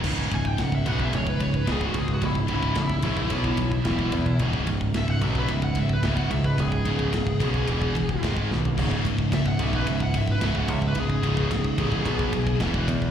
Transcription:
<<
  \new Staff \with { instrumentName = "Lead electric guitar" } { \time 4/4 \key cis \minor \tempo 4 = 110 r8 gis''16 g''16 fis''16 e''16 fis''16 e''16 cis''16 b'16 cis''16 b'16 gis'16 fis'16 gis'16 fis'16 | e'16 r16 e'8 e'2. | r4 e''16 fis''16 e''16 b'16 e''16 fis''16 e''16 b'16 e''16 fis''16 e''16 b'16 | gis'2. r4 |
r4 e''16 fis''16 e''16 b'16 e''16 fis''16 e''16 b'16 e''16 fis''16 e''16 b'16 | gis'2. r4 | }
  \new Staff \with { instrumentName = "Distorted electric guitar" } { \clef bass \time 4/4 \key cis \minor r1 | r1 | r1 | r1 |
<cis, gis, cis>2.~ <cis, gis, cis>8 <cis, gis, cis>8 | <cis, gis, cis>2 <b, fis b>4 <e, b, e>4 | }
  \new Staff \with { instrumentName = "Distorted electric guitar" } { \clef bass \time 4/4 \key cis \minor <cis, gis, cis>8 <cis, gis,>8 <cis, gis,>8 <cis, gis, cis>8 <cis, gis,>8 <cis, gis,>8 <cis, gis, cis>8 <cis, gis,>8 | <cis, gis,>8 <cis, gis, cis>8 <cis, gis,>8 <cis, gis, cis>8 <b, fis b>8 <b, fis>8 <e, b, e>8 <e, b,>8 | <cis, gis, cis>8 <cis, gis,>8 <cis, gis,>8 <cis, gis, cis>8 <cis, gis,>8 <cis, gis,>8 <cis, gis, cis>8 <cis, gis,>8 | <cis, gis,>8 <cis, gis, cis>8 <cis, gis,>8 <cis, gis, cis>8 <e, b, e>8 <e, b,>8 <gis, dis gis>8 <gis, dis>8 |
<cis, gis, cis>8 <cis, gis,>8 <cis, gis,>8 <cis, gis, cis>8 <cis, gis,>8 <cis, gis,>8 <cis, gis, cis>8 <cis, gis,>8 | <cis, gis,>8 <cis, gis, cis>8 <cis, gis,>8 <cis, gis, cis>8 <b, fis b>8 <b, fis>8 <e, b, e>8 <e, b,>8 | }
  \new Staff \with { instrumentName = "Distorted electric guitar" } { \clef bass \time 4/4 \key cis \minor <cis, gis, cis>8 <cis, gis,>8 <cis, gis,>8 <cis, gis, cis>8 <cis, gis,>8 <cis, gis,>8 <cis, gis, cis>8 <cis, gis,>8 | <cis, gis,>8 <cis, gis, cis>8 <cis, gis,>8 <cis, gis, cis>8 <b, fis b>8 <b, fis>8 <e, b, e>8 <e, b,>8 | <cis, gis, cis>8 <cis, gis,>8 <cis, gis,>8 <cis, gis, cis>8 <cis, gis,>8 <cis, gis,>8 <cis, gis, cis>8 <cis, gis,>8 | <cis, gis,>8 <cis, gis, cis>8 <cis, gis,>8 <cis, gis, cis>8 <e, b, e>8 <e, b,>8 <gis, dis gis>8 <gis, dis>8 |
<cis, gis, cis>8 <cis, gis,>8 <cis, gis,>8 <cis, gis, cis>8 <cis, gis,>8 <cis, gis,>8 <cis, gis, cis>8 <cis, gis,>8 | <cis, gis,>8 <cis, gis, cis>8 <cis, gis,>8 <cis, gis, cis>8 <b, fis b>8 <b, fis>8 <e, b, e>8 <e, b,>8 | }
  \new Staff \with { instrumentName = "Picked electric bass" } { \clef bass \time 4/4 \key cis \minor cis,,8 cis,,8 cis,,8 b,,8 cis,,4 cis,,8 cis,8 | cis,,8 cis,,8 cis,,8 ais,,8 b,,4 e,,8 e,8 | cis,,8 cis,,8 cis,,8 b,,8 cis,,4 cis,,8 cis,8 | cis,,8 cis,,8 cis,,8 b,,8 e,,4 gis,,8 b,,8 |
cis,,8 cis,,8 cis,,8 b,,8 cis,,4 cis,,8 cis,8 | cis,,8 cis,,8 cis,,8 a,,8 b,,4 e,,8 e,8 | }
  \new DrumStaff \with { instrumentName = "Drums" } \drummode { \time 4/4 <cymc bd>16 bd16 <bd cymr>16 bd16 <bd cymr sn>16 bd16 <bd cymr>16 bd16 <bd cymr>16 bd16 <bd cymr>16 bd16 <bd cymr sn>16 bd16 <bd cymr>16 bd16 | <bd cymr>16 bd16 <bd cymr>16 bd16 <bd cymr sn>16 bd16 <bd cymr>16 bd16 <bd cymr>16 bd16 <bd cymr>16 bd16 <bd cymr sn>16 bd16 <bd cymr>16 bd16 | <bd cymr>16 bd16 <bd cymr>16 bd16 <bd cymr sn>16 bd16 <bd cymr>16 bd16 <bd cymr>16 bd16 <bd cymr>16 bd16 <bd cymr sn>16 bd16 <bd cymr>16 bd16 | <bd cymr>16 bd16 <bd cymr>16 bd16 <bd cymr sn>16 bd16 <bd cymr>16 bd16 <bd cymr>16 bd16 <bd cymr>16 bd16 <bd cymr sn>16 bd16 sn16 tomfh16 |
<cymc bd>16 bd16 <bd cymr>16 bd16 <bd cymr sn>16 bd16 <bd cymr>16 bd16 <bd cymr>16 bd16 <bd cymr>16 bd16 <bd cymr sn>16 bd16 <bd cymr>16 bd16 | <bd cymr>16 bd16 <bd cymr>16 bd16 <bd cymr sn>16 bd16 <bd cymr>16 bd16 <bd cymr>16 bd16 <bd cymr>16 bd16 <bd cymr sn>16 bd16 <bd cymr>16 bd16 | }
>>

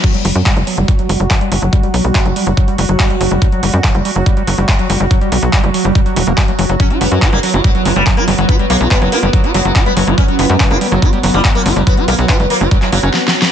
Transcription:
<<
  \new Staff \with { instrumentName = "Ambient pad" } { \time 4/4 \tempo 4 = 142 <fis fis'>1~ | <fis fis'>1~ | <fis fis'>1~ | <fis fis'>1 |
b1~ | b1~ | b1~ | b1 | }
  \new Staff \with { instrumentName = "Acid bass" } { \clef bass \time 4/4 fis16 g16 g16 fis16 g16 g16 fis16 g16 g16 fis16 g16 g16 fis16 g16 g16 fis16 | g16 g16 fis16 g16 r16 fis16 g16 g16 fis16 g16 g16 fis16 g16 g16 fis16 g16 | g16 fis16 g16 g16 fis16 g16 g16 fis16 g16 g16 fis16 g16 g16 fis16 g16 g16 | fis16 g16 g16 fis16 g16 g16 fis16 g16 g16 fis16 fis16 ais16 g16 fis16 fis16 fis16 |
fis16 fis'16 g16 fis16 fis'16 g16 fis16 fis'16 g16 fis16 fis'16 g16 fis16 fis'16 g16 fis16 | fis'16 g16 fis16 fis'16 g16 fis16 fis'16 g16 fis16 fis'16 g16 fis16 fis'16 g16 fis16 fis'16 | g16 fis16 fis'16 g16 fis16 fis'16 g16 fis16 fis'16 g16 fis16 fis'16 g16 fis16 fis'16 g16 | fis16 fis'16 g16 fis16 fis'16 g16 fis16 fis'16 g16 fis16 ais16 cis'16 r4 | }
  \new Staff \with { instrumentName = "Sitar" } { \clef bass \time 4/4 r1 | r1 | r1 | r1 |
cis'16 fis16 b16 fis16 fis16 ais16 fis16 fis16 fis16 fis16 fis16 g16 fis16 ais16 fis16 fis16 | b16 fis16 ais16 fis16 b16 fis16 ais16 fis16 fis16 fis16 fis16 fis16 fis16 b16 fis16 fis16 | cis'16 fis16 b16 fis16 fis16 ais16 fis16 fis16 fis16 fis16 fis16 g16 r16 ais16 fis16 fis16 | b16 fis16 ais16 fis16 b16 fis16 ais16 fis16 fis16 fis16 fis16 fis16 r4 | }
  \new Staff \with { instrumentName = "Analog synth bass" } { \clef bass \time 4/4 r8 fis,,16 fis,16 r16 fis,,16 r16 fis,,16 r8 fis,,16 fis,,16 r8 fis,,16 fis,,16 | r8 b,,16 b,,16 r16 fis,,16 r16 fis,,16 r8 fis,,16 fis,,16 r8 fis,,16 fis,,16 | r8 fis,,16 fis,16 r16 fis,,16 r16 fis,,16 r8 fis,,16 fis,,16 r8 fis,,16 fis,,16 | r8 b,,16 b,,16 r16 fis,,16 r16 fis,,16 r8 e,,16 e,,16 r8 fis,,16 fis,,16 |
r8 fis,,16 fis,16 r16 fis,,16 r16 fis,,16 r8 fis,,16 fis,,16 r8 fis,,16 fis,,16 | r8 b,,16 b,,16 r16 fis,,16 r16 fis,,16 r8 fis,,16 fis,,16 r8 fis,,16 fis,,16 | r8 fis,,16 fis,16 r16 fis,,16 r16 fis,,16 r8 fis,,16 fis,,16 r8 fis,,16 fis,,16 | r8 b,,16 b,,16 r16 fis,,16 r16 fis,,16 r8 fis,,16 fis,,16 r4 | }
  \new DrumStaff \with { instrumentName = "Drums" } \drummode { \time 4/4 <cymc hh bd>16 hh16 hho16 hh16 <hc hh bd>16 hh16 hho16 hh16 <hh bd>16 hh16 hho16 hh16 <hc hh bd>16 hh16 hho8 | <hh bd>16 hh16 hho16 hh16 <hc hh bd>16 hh16 hho16 hh16 <hh bd>16 hh16 hho16 hh16 <hc hh bd>16 hh16 hho16 hh16 | <hh bd>16 hh16 hho8 <hc hh bd>16 hh16 hho8 <hh bd>16 hh16 hho16 hh16 <hc hh bd>16 hh16 hho16 hh16 | <hh bd>16 hh16 hho16 hh16 <hc hh bd>16 hh16 hho8 <hh bd>16 hh16 hho8 <hc hh bd>16 hh16 hho16 hh16 |
<hh bd>16 hh16 hho16 hh16 <hc hh bd>16 hh16 hho16 hh16 <hh bd>16 hh16 hho16 hh16 <hc hh bd>16 hh16 hho16 hh16 | <hh bd>16 hh16 hho16 hh16 <hc hh bd>16 hh16 hho16 hh16 <hh bd>16 hh16 hho16 hh16 <hc hh bd>16 hh16 hho16 hh16 | <hh bd>16 hh16 hho8 <hc hh bd>16 hh16 hho16 hh16 <hh bd>16 hh16 hho16 hh16 <hc hh bd>16 hh16 hho16 hh16 | <hh bd>16 hh16 hho16 hh16 <hc hh bd>16 hh16 hho16 hh16 <hh bd>16 <hc hh>16 hho16 hh16 \tuplet 3/2 { sn8 sn8 sn8 } | }
>>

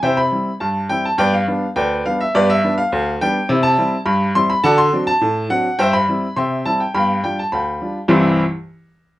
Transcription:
<<
  \new Staff \with { instrumentName = "Upright piano" } { \time 2/4 \key c \major \tempo 4 = 104 <c'' e'' g''>16 b''8. a''8 g''16 a''16 | <b' d'' g''>16 f''8. <b' d'' g''>8 f''16 e''16 | <g' b' d''>16 e''8 f''8. g''8 | r16 a''8. b''8 c'''16 b''16 |
<d'' fis'' a''>16 c'''8 a''8. fis''8 | <c'' e'' g''>16 b''8. <e'' g'' c'''>8 a''16 g''16 | <f'' g'' b''>8 g''16 a''16 <f'' g'' b''>4 | <c, g, e g c' e' c'''>8 r4. | }
  \new Staff \with { instrumentName = "Upright piano" } { \time 2/4 \key c \major <c e'>8 <g c' e'>8 g,8 <g c' e'>8 | <g, b>8 <g b d'>8 d,8 <g b d'>8 | <g, b>8 <g b d'>8 d,8 <g b d'>8 | <c e'>8 <g c' e'>8 g,8 <g c' e'>8 |
<d fis'>8 <fis c' d'>8 a,8 <fis c' d'>8 | g,8 <g c' e'>8 c8 <g c' e'>8 | <g, b>8 <g d' f'>8 d,8 <g d' f'>8 | r2 | }
>>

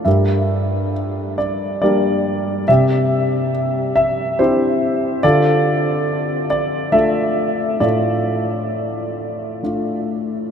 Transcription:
<<
  \new Staff \with { instrumentName = "Grand piano" } { \time 3/4 \key d \minor \tempo 4 = 70 << { e''4 r8 d''8 d''4 | e''4 r8 e''8 c''4 | d''4. d''8 e''4 | d''2 r4 | } \\ { <g' bes'>4. r8 <g' bes'>4 | g'4. r8 g'4 | <f' a'>4. r8 a'4 | <f' a'>2 r4 | } >> }
  \new Staff \with { instrumentName = "Grand piano" } { \time 3/4 \key d \minor g,2 <g bes d'>4 | c2 <c' d' e'>4 | d2 <a d' f'>4 | a,2 <a d' f'>4 | }
>>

